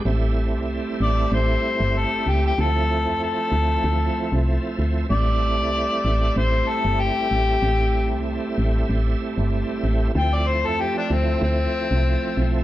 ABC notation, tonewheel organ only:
X:1
M:4/4
L:1/8
Q:"Swing 16ths" 1/4=95
K:Am
V:1 name="Tonewheel organ"
[G,A,CE]8 | [F,A,CE]8 | [G,A,CE]8- | [G,A,CE]8 |
[F,A,CE]8 |]